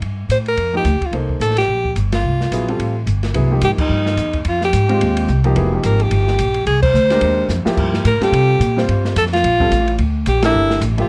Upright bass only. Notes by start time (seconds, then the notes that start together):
0.01 G2
0.29 A2
0.57 F2
0.85 D2
1.01 muted upright bass stroke
1.11 C2
1.40 A1
1.67 A#1
1.95 G1
2.23 C2
2.51 A#1
2.79 A1
3.06 G1
3.34 C2
3.62 G#2
3.78 muted upright bass stroke
3.89 G2
4.17 E2
4.45 F2
4.73 G#2
5.01 D#2
5.28 C2
5.55 F1
5.83 G#1
6.11 G1
6.39 A#1
6.66 C2
6.93 D2
7.21 D#2
7.49 F2
7.65 muted upright bass stroke
7.77 G2
8.05 A2
8.20 muted upright bass stroke
8.32 C3
8.60 A#2
8.88 G2
9.16 F2
9.44 A#1
9.70 A1
9.98 D2
10.26 A#1
10.54 G1
10.81 A1